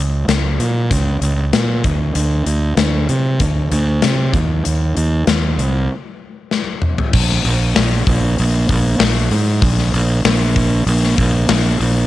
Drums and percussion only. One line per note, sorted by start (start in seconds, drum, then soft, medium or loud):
0.29 snare loud
0.29 closed hi-hat medium
0.60 closed hi-hat medium
0.91 kick loud
0.91 closed hi-hat medium
1.22 closed hi-hat medium
1.53 snare loud
1.53 closed hi-hat medium
1.84 kick medium
1.84 closed hi-hat medium
2.15 closed hi-hat medium
2.46 closed hi-hat medium
2.77 snare loud
2.77 closed hi-hat medium
3.09 closed hi-hat medium
3.40 kick loud
3.40 closed hi-hat medium
3.71 closed hi-hat medium
4.02 snare loud
4.02 closed hi-hat medium
4.33 kick loud
4.33 closed hi-hat medium
4.65 closed hi-hat medium
4.97 closed hi-hat medium
5.27 snare loud
5.27 closed hi-hat medium
5.59 closed hi-hat medium
6.51 snare medium
6.82 mid tom medium
6.98 floor tom medium
7.13 kick loud
7.13 crash loud
7.29 snare soft
7.45 open hi-hat medium
7.76 snare loud
7.76 open hi-hat medium
8.07 kick medium
8.07 open hi-hat medium
8.38 open hi-hat medium
8.69 kick medium
8.69 open hi-hat medium
9.00 snare loud
9.00 open hi-hat medium
9.31 open hi-hat medium
9.62 kick loud
9.62 open hi-hat medium
9.78 snare soft
9.94 open hi-hat medium
10.25 snare loud
10.25 open hi-hat medium
10.56 kick medium
10.56 open hi-hat medium
10.87 open hi-hat medium
11.03 snare soft
11.18 kick medium
11.18 open hi-hat medium
11.49 snare loud
11.49 open hi-hat medium
11.81 open hi-hat medium